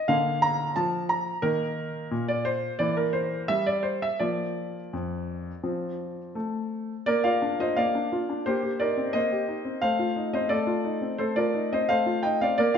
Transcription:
grand piano
0.08 D3 A#3 F5
0.42 A#5
0.76 F3 A5
1.09 A#5
1.42 D#3 A#3 A#4
2.11 A#2
2.28 D5
2.45 C5
2.79 E3 A#3 D5
2.97 A#4
3.13 C5
3.48 G3 E5
3.67 D5
3.83 C5
4.02 E5
4.20 F3 A#3 D5
4.93 F2
5.63 F3 C4
6.35 A3
7.06 A#3 A#4 D5
7.24 F4 D5 F5
7.42 D4
7.60 F4 C5 D#5
7.76 A#3 D5 F5
7.95 D4
8.12 F4
8.29 D4
8.46 A#3 G4 C5
8.63 G4
8.80 D#4 A#4 D5
8.97 C4
9.13 A#3 C5 D#5
9.31 G4
9.48 D#4
9.65 C4
9.82 A3 C5 F5
9.99 F4
10.16 D#4
10.33 C4 C5 D#5
10.49 A3 A4 D5
10.67 F4
10.84 D#4
11.01 C4
11.18 A3 A4 C5
11.36 F4 A#4 D5
11.54 D#4
11.72 C4 C5 D#5
11.89 A3 C5 F5
12.06 F4
12.23 D#4 D#5 G5
12.41 C4 D5 F5
12.58 A#3 A#4 D5
12.74 F5

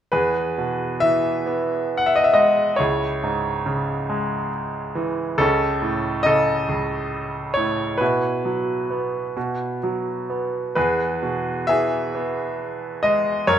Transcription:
grand piano
0.12 E2 G#4 B4
0.58 B2
1.00 E3 E5
1.46 B3
1.97 F#5
2.06 E5
2.16 D#5
2.24 E5
2.34 G#3 D#5
2.76 C#2 E4 C#5
3.23 G#2
3.66 C#3
4.10 G#3
4.95 E3
5.38 C#2 C#4 A4
5.82 A2
6.23 C#3 A4 D#5
6.69 C#2
7.54 A2 C#5
7.98 B2 B4
8.02 E4
8.45 F#3
8.90 B3
9.37 B2
9.83 F#3
10.30 B3
10.75 E2 G#4 B4
11.23 B2
11.67 E3 G#4 E5
12.15 B3
13.03 G#3 D#5
13.47 F#2 A#4 C#5

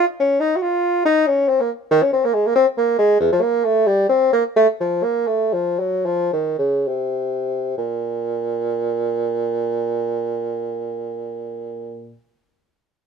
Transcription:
bassoon
0.20 C#4
0.40 D#4
0.56 F#4
0.62 F4
1.05 D#4
1.27 C#4
1.49 C4
1.60 A#3
1.91 D#3
2.03 C#4
2.13 C4
2.25 A#3
2.34 G#3
2.47 A#3
2.56 C4
2.78 A#3
2.99 G#3
3.20 E2
3.32 F3
3.41 A#3
3.65 A3
3.87 G3
4.09 C4
4.33 A#3
4.56 A3
4.80 F3
5.03 A#3
5.27 A3
5.53 F3
5.79 F#3
6.06 F3
6.33 D#3
6.59 C#3
6.88 C3
7.78 A#2

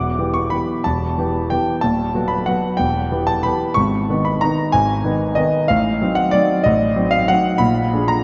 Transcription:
grand piano
Already playing: E1 E2 D6
0.19 E3 B3 G4
0.34 C#6
0.50 E3 B3 G4 B5
0.84 E1 E2 A5
1.18 E3 B3 G4
1.50 E3 B3 G4 G5
1.81 D#1 D#2 A5
2.15 F#3 B3 F#4
2.28 B5
2.46 F#3 B3 F#4 F#5
2.77 E1 E2 G5
3.12 E3 B3 G4
3.27 A5
3.43 E3 B3 G4 B5
3.74 G#1 G#2 C#6
4.10 D#3 B3 D#4
4.25 B5
4.41 D#3 B3 D#4 A#5
4.72 G#1 G#2 G#5
5.04 D#3 B3 D#4
5.35 D#3 B3 D#4 D#5
5.68 A1 A2 F5
6.01 F#3 C4 D#4
6.15 F#5
6.31 F#3 C4 D#4 D5
6.64 A1 A2 D#5
6.96 F#3 C4 D#4
7.11 F5
7.28 F#3 C4 D#4 F#5
7.58 A#1 A#2 B5
7.93 F3 D4 G#4
8.08 A#5

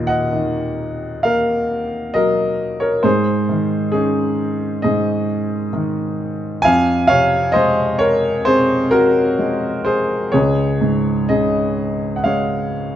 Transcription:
grand piano
Already playing: D#2 A#2 A#4 D#5
0.07 D#5 F#5
0.33 D#3
1.23 A#3 A#4 F5
2.14 F#3 A#4 D#5
2.80 A#4 C#5
3.03 G#2 G#4 C5
3.49 D#3
3.92 C#4 D#4 G#4
4.82 G#2 G#4 D#5
5.73 D#3
6.62 F2 F5 G#5
7.07 C3 C#5 F5
7.52 G#3 C5 D#5
7.99 A#4 C#5
8.45 C4 G#4 C5
8.91 F#4 A#4
9.39 G#3
9.85 G#4 C5
10.32 C#2 G#4 C#5
10.81 G#2
11.29 C#3 G#4 D#5
12.16 F#5
12.24 G#3 C#5 F5

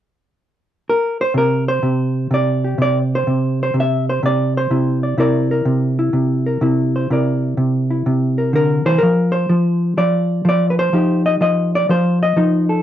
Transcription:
hollow-body jazz guitar
0.90 A#4
1.21 C5
1.34 C3 A#4
1.69 C5
1.83 C3
2.31 C3 D5
2.65 G4
2.78 C3 D5
3.15 C5
3.27 C3
3.63 C5
3.74 C3
3.80 E5
4.09 C5
4.23 C3 D5
4.57 C5
4.71 C3 E4
5.03 D5
5.18 C3 E4 A#4 D5
5.51 A#4
5.65 C3
5.99 E4
6.13 C3
6.47 A#4
6.61 C3 E4
6.96 C5
7.10 C3 E4 A#4 D5
7.57 C3
7.90 E4
8.06 C3
8.38 A#4
8.53 D3 A#4
8.85 E3 C5
8.98 A#4
9.03 F3
9.32 C5
9.49 F3
9.97 F3 D5
10.45 F3 D5
10.70 B4
10.79 C5
10.93 F3 D#4 G4
11.26 D#5
11.41 F3 D#5
11.75 D5
11.89 F3 C5
12.23 D#5
12.37 F3 D#4
12.69 A4

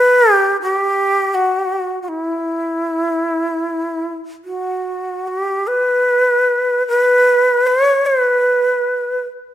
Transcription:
shakuhachi
Already playing: B4
0.34 G4
0.62 G4
1.34 F#4
2.02 F#4
2.08 E4
4.45 F#4
5.28 F#4
5.39 G4
5.67 B4
6.88 B4
7.67 C#5
8.06 B4

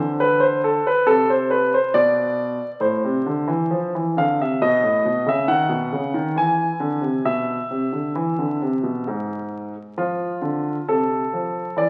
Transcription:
grand piano
Already playing: D3
0.20 B4
0.40 C5
0.64 A4
0.87 B4
1.06 C3 A4
1.30 C5
1.50 B4
1.74 C5
1.94 B2 D5
2.80 A2 C5
3.04 C3
3.26 D3
3.48 E3
3.71 F3
3.95 E3
4.17 D3 F5
4.40 C3 E5
4.62 B2 D#5
4.83 A2
5.05 B2
5.26 C#3 E5
5.48 D#3 F#5
5.69 B2
5.92 C#3
6.14 D#3
6.36 E3 G#5
6.80 D3
7.02 C3
7.25 B2 E5
7.70 C3
7.92 D3
8.15 E3
8.39 D3
8.62 C3
8.83 B2
9.07 G#2
9.98 F3 F4
10.42 D3
10.88 C3 A4
11.33 F3
11.77 E3 D5

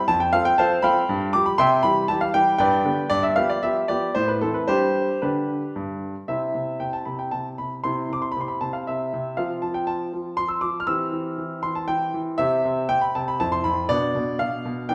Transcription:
grand piano
0.08 F2 A5
0.20 G5
0.33 F3 C4 A4 F5
0.45 G5
0.58 F3 C4 A4 C5 F5 A5
0.82 F3 C4 A4 F5 G5 B5
1.09 G2
1.33 F3 G3 G4 D6
1.46 B5
1.58 C3 E5 G5 C6
1.83 E3 G3 G4 B5
2.08 E3 G3 G4 A5
2.21 F5
2.34 E3 G3 G4 G5
2.58 G2 B4 D5 G5
2.85 D3 B3 G4
3.10 G2 D5
3.23 E5
3.36 F3 B3 G4 F5
3.49 D5
3.63 F3 B3 G4 E5
3.88 F3 B3 G4 D5
4.15 A2 C5
4.28 B4
4.41 E3 C4 E4 A4
4.54 B4
4.68 G3 D4 G4 C5
5.22 D3 D4 G4 B4
5.76 G2
6.28 C3 C4 E4 E5
6.55 C3
6.80 C3 G5
6.93 A5
7.05 C3 B5
7.19 G5
7.31 C3 A5
7.58 C3 B5
7.84 C3 C4 E4 C6
8.10 C3 D6
8.22 C6
8.32 B5
8.37 C3
8.41 C6
8.48 B5
8.61 C3 A5
8.73 F5
8.87 C3 E5
9.13 C3
9.37 F3 C4 F4 F5
9.62 F3 A5
9.74 G5
9.87 F3 A5
10.13 F3
10.37 F3 C6
10.48 E6
10.61 F3 D6
10.80 F6
10.87 E3 C4 G4 E6
11.12 E3
11.38 E3
11.63 E3 C6
11.75 A5
11.88 E3 G5
12.14 E3
12.38 C3 C4 G4 E5
12.65 C3
12.89 C3 G5
13.01 B5
13.15 C3 A5
13.28 B5
13.40 F2 C4 E4 A5
13.52 C6
13.64 F2 B5
13.89 B2 B3 D4 D5
14.15 B2
14.39 B2 F5
14.65 B2
14.89 E3 B3 D4 G5

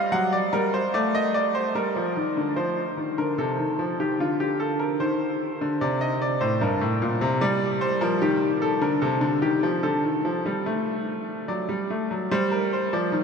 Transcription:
grand piano
Already playing: F5
0.12 F#3 F#5
0.32 D5
0.53 G3 A#4
0.74 C5
0.94 A3 D5
1.15 D#5
1.34 D5
1.55 C5
1.75 G3 A#4
1.96 F3
2.17 D#3
2.37 D3
2.56 F3 C5
2.97 D#3
3.18 D3 A#4
3.38 C3 A4
3.59 D#3
3.79 F3
4.00 D#3 G4
4.20 D3 F4
4.40 G4
4.60 A4
4.79 A#4
5.00 D#3 C5
5.61 D3
5.81 C3 D5
6.01 D#5
6.21 D5
6.41 A2 C5
6.61 G2 A#4
6.81 A2
7.02 A#2
7.21 C3
7.41 G3 D5
7.81 C5
8.01 F3 A#4
8.22 D#3 G4
8.62 A4
8.81 D3 A#4
9.01 C3 A4
9.21 D3
9.42 D#3 G4
9.63 F3
9.83 D3 A4
10.04 D#3
10.25 F3
10.46 G3
10.66 A3
11.48 F#3 D5
11.69 G3
11.90 A3
12.11 F#3
12.31 G3 C5
12.51 A#4
12.73 C5
12.93 F3 D5
13.12 D#3

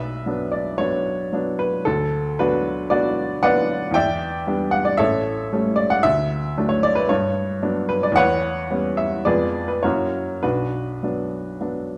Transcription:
upright piano
Already playing: B1 B4 E5
0.26 F#3 B3 D4
0.52 D5
0.78 F#3 B3 D4 C#5
1.33 F#3 B3 D4
1.59 B4
1.85 D2 A4
2.39 F#3 B3 D4 F#4 B4
2.90 F#3 B3 D4 F#4 B4 D5
3.43 F#3 B3 D4 B4 D5 F#5
3.91 E2 G5
3.95 D5 E5
4.47 G3 B3 D4
4.71 F#5
4.85 D5
4.97 A1 A4 C#5 E5
5.52 G3 A3 C#4
5.76 D5
5.90 F#5
6.03 D2 E5
6.57 F#3 A3 D4
6.69 C#5
6.83 D5
6.95 B4
7.09 G2 C#5
7.62 F#3 B3 D4
7.89 B4
8.03 D5
8.12 E2 F#5
8.17 B4 C#5
8.70 G3 B3 C#4
8.97 E5
9.25 F2 G#3 B3 F4 G#4 B4 D5
9.68 B4
9.83 F#2 F#3 A#3 E4 F#4 A#4 C#5
10.43 B1 D4 F#4 B4
11.03 F#3 B3 D4
11.61 F#3 B3 D4

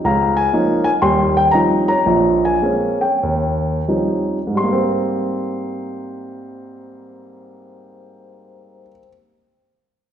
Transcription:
grand piano
0.04 C#2 F5 A#5
0.37 G#5
0.53 F3 A#3 C#4 D#4
0.84 G#5
1.02 D#2 G3 G5 C6
1.37 G5
1.51 F3 G3 C4 C#4 D#4 A#5
1.88 C#5 A#5
2.06 A#1 A#2
2.45 G#5
2.62 G#3 A#3 C4 C#4
3.01 C#5 G5
3.23 D#2
3.88 F3 G3 C4 C#4 D#4
4.47 G#2
4.55 G3 C6
4.64 A#3
4.72 C4

